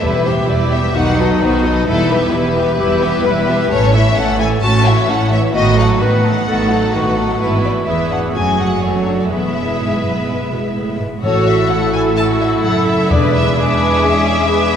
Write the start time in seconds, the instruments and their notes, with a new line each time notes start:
0.01 double bass section E1, timpani E2, cello section E2, viola section G3 E4, violin section E4 B4, clarinet G4
0.25 viola section E3 B3, violin section G4 C5 E5
0.48 double bass section E1, cello section E2, viola section G3 E4, violin section E4 B4 D5
0.71 viola section E3 B3, violin section G4 E5
0.94 double bass section B1, cello section B2, viola section D#3 D#4, clarinet D#4, violin section F#4 B4 F#5
1.19 viola section F#3 F#4, violin section A4 B4 D#5
1.41 double bass section B1, cello section B2, viola section D#3 D#4, violin section F#4 B4 C5
1.64 viola section F#3 F#4, violin section A4 B4 D#5
1.87 double bass section E1, cello section E2, viola section G3 E4, clarinet E4, violin section E4 A4 B4
2.10 viola section E3 B3, violin section G4 B4 E5
2.32 double bass section E1, cello section E2, viola section G3 E4, violin section E4 B4, clarinet G4
2.56 viola section E3 B3, violin section G4 E5
2.77 double bass section E1, cello section E2, viola section G3 E4, violin section E4 B4, clarinet G4
3.02 viola section E3 B3, violin section G4 E5
3.25 double bass section E1, cello section E2, viola section G3 E4, violin section E4 B4, clarinet B4
3.48 viola section E3 B3, violin section G4 E5
3.71 double bass section A1, cello section A2, viola section A3 C#4, violin section C#4 A4 C#5
3.93 viola section E3 A3, violin section E4 C#5 E5
4.16 double bass section A1, cello section A2, viola section A3 C#4, violin section C#4 A4 F#5, clarinet A4
4.39 viola section E3 A3, violin section E4 C#5 G#5
4.62 double bass section A1, cello section A2, viola section A3 C#4, violin section C#4 A4 A5, clarinet F#4
4.85 viola section E3 A3, violin section E4 C#5 E5
5.08 double bass section A1, cello section A2, viola section A3 C#4, violin section C#4 A4 F#5, clarinet E4
5.31 viola section E3 A3, violin section E4 C#5 E5
5.54 double bass section A1, cello section A2, viola section D#3 B3, clarinet F#4, violin section F#4 B4 D#5
5.77 viola section F#3 A3, violin section D#4 A4 F#5
6.00 double bass section A1, cello section A2, viola section D#3 B3, violin section F#4 B4 F#5, clarinet B4
6.24 viola section F#3 A3, violin section D#4 A4
6.47 double bass section A1, cello section A2, viola section D#3 B3, violin section F#4 B4, clarinet A4
6.71 viola section F#3 A3, violin section D#4 A4
6.93 double bass section A1, cello section A2, viola section D#3 B3, violin section F#4 B4, clarinet F#4
7.17 viola section F#3 A3, violin section D#4 A4
7.40 double bass section G#1, cello section G#2, viola section E3 B3, violin section E4 B4
7.65 violin section D5
7.87 double bass section E1, cello section E2, viola section E3 B3, violin section E4 B4 E5, clarinet G#4
8.11 violin section D4 F#5
8.35 double bass section F#1, cello section F#2, viola section F#3 A3, violin section C#4 F#4 G#5
8.59 violin section F#5
8.82 viola section F#3 A3, violin section C#4 F#4 C#5, clarinet A4
9.07 violin section D4
9.20 violin section D5
9.30 double bass section E1, cello section E2, viola section G#3 B3, violin section E4 B4 E5, clarinet G#4
9.80 cello section G#2
10.03 cello section F#2
10.27 cello section G#2
10.52 cello section B2
10.76 cello section A2
10.99 cello section G#2
11.23 double bass section A1, timpani A2, cello section A2, french horn section A3 E4, violin section F#4 C#5, viola section F#4 A4, clarinet A4, flute E6
11.47 violin section E5
11.69 violin section E4 F#5, viola section A4
11.93 violin section G#5
12.16 viola section E4, violin section F#4 A5, clarinet A4, flute E6
12.41 violin section E5
12.63 double bass section F#1, cello section F#2, violin section E4 F#5, viola section A4
12.87 violin section E5
13.10 double bass section E1, cello section E2, timpani E2, french horn section G#3 D4, viola section D4 B4, clarinet G#4, violin section D5, flute D6
13.34 violin section E5
13.56 violin section G#4 E5, clarinet G#4, viola section B4, flute D6
14.04 viola section C#4 G#4
14.49 viola section B3 G#4, violin section B4